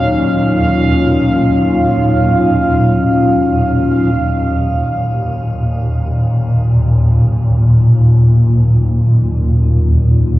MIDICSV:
0, 0, Header, 1, 4, 480
1, 0, Start_track
1, 0, Key_signature, -6, "minor"
1, 0, Tempo, 500000
1, 9975, End_track
2, 0, Start_track
2, 0, Title_t, "Synth texture"
2, 0, Program_c, 0, 99
2, 0, Note_on_c, 0, 77, 76
2, 4011, Note_off_c, 0, 77, 0
2, 9975, End_track
3, 0, Start_track
3, 0, Title_t, "Analog synth pad"
3, 0, Program_c, 1, 89
3, 0, Note_on_c, 1, 54, 72
3, 0, Note_on_c, 1, 61, 76
3, 0, Note_on_c, 1, 63, 76
3, 0, Note_on_c, 1, 65, 71
3, 9975, Note_off_c, 1, 54, 0
3, 9975, Note_off_c, 1, 61, 0
3, 9975, Note_off_c, 1, 63, 0
3, 9975, Note_off_c, 1, 65, 0
3, 9975, End_track
4, 0, Start_track
4, 0, Title_t, "Synth drone"
4, 0, Program_c, 2, 95
4, 0, Note_on_c, 2, 39, 69
4, 0, Note_on_c, 2, 46, 60
4, 3960, Note_off_c, 2, 46, 0
4, 3965, Note_off_c, 2, 39, 0
4, 3971, Note_on_c, 2, 46, 68
4, 3977, Note_on_c, 2, 39, 67
4, 9975, Note_off_c, 2, 39, 0
4, 9975, Note_off_c, 2, 46, 0
4, 9975, End_track
0, 0, End_of_file